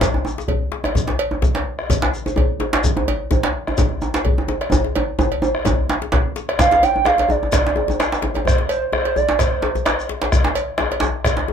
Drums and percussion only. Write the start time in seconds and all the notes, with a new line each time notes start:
0.01 bombo low, cowbell, djembe slap, djembe tone, djembe bass, shekere
0.14 bombo rim, djembe tone
0.25 djembe slap, djembe tone, shekere
0.38 djembe slap, shekere
0.48 bombo low, cowbell, djembe bass
0.72 bombo rim, djembe slap
0.84 bombo rim, cowbell, djembe tone
0.95 bombo low, djembe tone, djembe bass, shekere
1.08 djembe slap
1.19 cowbell
1.31 djembe tone
1.42 bombo rim, bombo low, djembe slap, djembe bass, shekere
1.55 cowbell, djembe slap
1.79 bombo rim
1.90 bombo low, cowbell, djembe slap, djembe tone, djembe bass, shekere
2.02 bombo rim, djembe slap
2.13 djembe slap, shekere
2.26 djembe slap, djembe tone, shekere
2.36 bombo low, cowbell, djembe tone, djembe bass
2.60 bombo rim, djembe slap, djembe tone
2.73 bombo rim, cowbell, djembe slap
2.84 bombo low, djembe tone, djembe bass, shekere
2.97 djembe slap, djembe tone
3.07 cowbell, djembe slap, djembe tone
3.31 bombo rim, bombo low, djembe slap, djembe tone, djembe bass, shekere
3.43 cowbell, djembe slap
3.67 bombo rim, djembe tone
3.78 bombo low, cowbell, djembe slap, djembe tone, djembe bass, shekere
3.92 bombo rim
4.02 djembe slap, djembe tone, shekere
4.14 djembe slap, shekere
4.25 bombo low, cowbell, djembe bass
4.38 djembe tone
4.48 bombo rim, djembe slap, djembe tone
4.61 bombo rim, cowbell
4.72 bombo low, djembe slap, djembe tone, djembe bass, shekere
4.84 djembe slap
4.95 cowbell, djembe tone
5.19 bombo low, djembe slap, djembe tone, djembe bass, shekere
5.31 cowbell, djembe slap
5.42 djembe tone, shekere
5.55 bombo rim
5.65 bombo low, cowbell, djembe slap, djembe tone, djembe bass, shekere
5.89 djembe slap
6.02 djembe slap
6.12 bombo low, cowbell, djembe slap, djembe bass
6.36 djembe slap, shekere
6.49 bombo rim, cowbell, djembe slap
6.59 bombo rim, bombo low, djembe slap, djembe bass, shekere
6.71 djembe slap
6.83 cowbell, djembe tone, shekere
6.96 djembe tone
7.05 bombo rim, djembe slap, djembe tone
7.18 cowbell, djembe slap
7.29 bombo rim, djembe tone, djembe bass, shekere
7.43 djembe tone
7.52 bombo rim, bombo low, cowbell, djembe slap, shekere
7.54 djembe slap
7.66 djembe slap
7.76 djembe tone
7.88 djembe slap, djembe tone, djembe bass, shekere
8.00 bombo rim, cowbell, djembe slap, shekere
8.12 bombo rim, djembe slap, shekere
8.22 djembe slap, djembe tone
8.35 cowbell, djembe tone
8.36 bombo rim, djembe tone
8.45 bombo rim, bombo low, djembe slap, djembe bass, shekere
8.58 djembe slap
8.69 cowbell, shekere
8.93 bombo rim, djembe tone
9.05 cowbell, djembe slap
9.16 bombo rim, djembe bass, shekere
9.29 djembe slap
9.39 bombo rim, bombo low, cowbell, djembe slap, shekere
9.62 djembe slap, djembe tone
9.75 djembe slap, djembe bass, shekere
9.85 bombo rim, cowbell, djembe slap, shekere
9.99 bombo rim, shekere
10.09 djembe slap
10.22 bombo rim, cowbell, djembe slap, djembe tone
10.32 bombo rim, bombo low, djembe slap, djembe bass, shekere
10.44 djembe slap
10.55 cowbell, shekere
10.78 bombo rim, djembe slap, djembe tone
10.91 cowbell, djembe slap
11.00 bombo rim, djembe slap, djembe bass, shekere
11.24 bombo rim, bombo low, cowbell, djembe slap, shekere
11.37 djembe slap
11.48 djembe tone